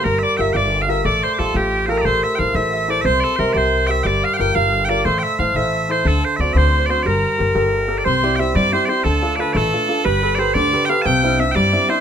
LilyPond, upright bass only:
\new Staff \with { instrumentName = "Upright bass" } { \clef bass \time 6/8 \key g \dorian \tempo 4. = 120 g,,8 r8 g,,8 g,,4. | a,,8 r8 a,,8 a,,4. | a,,8 r8 a,,8 a,,4. | c,8 r8 c,8 c,4. |
g,,8 r8 g,,8 g,,4. | a,,8 r8 a,,8 a,,4. | d,8 r8 d,8 d,4. | g,,8 r8 g,,8 g,,4. |
\key c \major c,4. g,8 r4 | d,4. a,,8 r4 | g,,4. d,8 r4 | c,4. g,8 r4 | }